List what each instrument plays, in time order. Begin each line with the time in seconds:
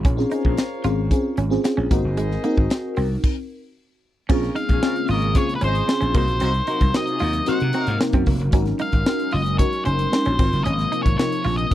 0.05 slap bass A#1, clean electric guitar C#4, horn section A#4 C#5 F5, kick, closed hi-hat
0.17 fm electric piano C4 C#4 F4 G#4, snare
0.30 fm electric piano C#4 F4 G#4 C5, clean electric guitar D#4, closed hi-hat
0.45 slap bass A#1, muted clean electric guitar stroke, kick
0.58 snare, closed hi-hat
0.84 slap bass G#1, fm electric piano C4 C#4 F4 G#4, clean electric guitar F4, closed hi-hat
1.11 fm electric piano C4 C#4 F4 G#4, kick, closed hi-hat
1.37 slap bass G#1, clean electric guitar C#4, closed hi-hat
1.50 fm electric piano C4 C#4 F4 G#4, snare
1.63 fm electric piano C4 C#4 F4 G#4, muted clean electric guitar stroke, snare, closed hi-hat
1.77 slap bass A#1, clean electric guitar C#4
1.91 slap bass G#1, clean electric guitar A#3, fm electric piano C4 D#4 F#4 A#4, horn section G#4 C5 D#5, kick, closed hi-hat
2.04 slap bass F#1
2.17 slap bass G#1, clean electric guitar G#3, closed hi-hat
2.32 snare
2.44 clean electric guitar A#3, fm electric piano C4 D#4 F#4 A#4, closed hi-hat
2.57 slap bass G#1, muted clean electric guitar stroke, kick
2.70 snare, closed hi-hat
2.96 slap bass C2, clean electric guitar C4, open hi-hat
3.24 kick, crash
4.28 slap bass A#1, analog synth pad C#3 G#3 A#3, fm electric piano C4 C#4 F4 G#4, clean electric guitar C#4, horn section C#4 F4 A#4, kick, crash
4.43 snare, closed hi-hat
4.55 clean electric guitar D#4, lead electric guitar F5, closed hi-hat
4.69 slap bass A#1, horn section F4 G#4 C#5, muted clean electric guitar stroke, kick, closed hi-hat
4.82 fm electric piano C4 C#4 F4 G#4, horn section C#4 F4 A#4, snare
4.96 closed hi-hat
5.08 slap bass G#1, horn section C#4 F4 A#4, clean electric guitar F4, lead electric guitar D#5, open hi-hat
5.22 closed hi-hat
5.35 fm electric piano C4 C#4 F4 G#4, horn section F4 G#4 C#5, lead electric guitar C#5, kick, closed hi-hat
5.49 closed hi-hat
5.55 lead electric guitar B4
5.61 slap bass G#1, clean electric guitar C#4, horn section G#4 C5 D#5, lead electric guitar C5, closed hi-hat
5.75 closed hi-hat
5.87 fm electric piano C4 C#4 F4 G#4, muted clean electric guitar stroke, snare
6.01 slap bass A#1, clean electric guitar C#4, closed hi-hat
6.14 slap bass C2, analog synth pad C3 F#3 A#3 D#4, clean electric guitar A#3, fm electric piano C4 D#4 F#4 A#4, lead electric guitar C5, kick, crash
6.28 slap bass A#1, closed hi-hat
6.40 slap bass C2, clean electric guitar C4, horn section D#4 F#4 C5, closed hi-hat
6.54 closed hi-hat
6.67 clean electric guitar D#4, horn section D#4 F#4 A#4, closed hi-hat
6.81 slap bass C2, muted clean electric guitar stroke, kick, closed hi-hat
6.94 fm electric piano C4 D#4 F#4 A#4, lead electric guitar D#5, snare
7.07 horn section C#4 F4 G#4, closed hi-hat
7.19 slap bass D#2, horn section D#4 F#4 A#4, clean electric guitar F4, open hi-hat
7.33 closed hi-hat
7.46 fm electric piano C4 D#4 F#4 A#4, horn section D#4 F#4 C5, lead electric guitar F#5, muted slap bass stroke, closed hi-hat
7.60 slap bass C3, closed hi-hat
7.73 clean electric guitar C4, horn section D#4 F#4 A#4, closed hi-hat
7.84 slap bass G#2, lead electric guitar F5, closed hi-hat
8.00 fm electric piano C4 D#4 F#4 A#4, muted clean electric guitar stroke, snare
8.13 slap bass F#2, clean electric guitar C4, kick, closed hi-hat
8.26 slap bass F1, clean electric guitar A#3, kick, open hi-hat
8.39 slap bass F#1, closed hi-hat
8.52 slap bass G#1, analog synth pad G#3 C#4, fm electric piano C#4 D#4 F#4 A#4, clean electric guitar C#4, kick, closed hi-hat
8.66 snare, closed hi-hat
8.79 clean electric guitar D#4, lead electric guitar F5, closed hi-hat
8.92 slap bass G#1, muted clean electric guitar stroke, kick, closed hi-hat
9.06 fm electric piano C#4 D#4 F#4 A#4, snare
9.20 closed hi-hat
9.31 slap bass F#1, clean electric guitar F4, lead electric guitar D#5, open hi-hat
9.46 closed hi-hat
9.59 fm electric piano C#4 D#4 F#4 A#4, lead electric guitar C#5, kick, closed hi-hat
9.73 closed hi-hat
9.85 slap bass F#1, clean electric guitar C#4, lead electric guitar C5, closed hi-hat
9.99 closed hi-hat
10.11 fm electric piano C#4 D#4 F#4 A#4, muted clean electric guitar stroke, snare
10.25 slap bass A#1, clean electric guitar C#4, closed hi-hat
10.39 slap bass G#1, analog synth pad C3 F3 A#3, fm electric piano C4 D#4 F4 A#4, clean electric guitar C4, kick, crash
10.53 slap bass F#1, closed hi-hat
10.64 slap bass G#1, clean electric guitar C#4, lead electric guitar D#5, closed hi-hat
10.79 snare, closed hi-hat
10.92 clean electric guitar D#4, closed hi-hat
11.03 slap bass G#1, lead electric guitar C#5, muted clean electric guitar stroke, kick, closed hi-hat
11.18 fm electric piano C3 D#4 F4 A#4, lead electric guitar C#5, snare
11.32 closed hi-hat
11.44 slap bass A#1, clean electric guitar F4, open hi-hat
11.58 lead electric guitar D#5, closed hi-hat